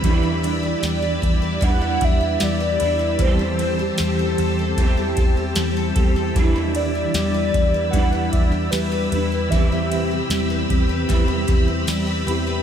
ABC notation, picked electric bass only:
X:1
M:4/4
L:1/8
Q:1/4=76
K:Em
V:1 name="Picked electric bass" clef=bass
E,,2 E,, E,, E,, E,, E,, E,, | E,,2 E,, E,, E,, E,, E,, E,, | E,,2 E,, E,, E,, E,, E,, E,, | E,,2 E,, E,, E,, E,, E,, E,, |]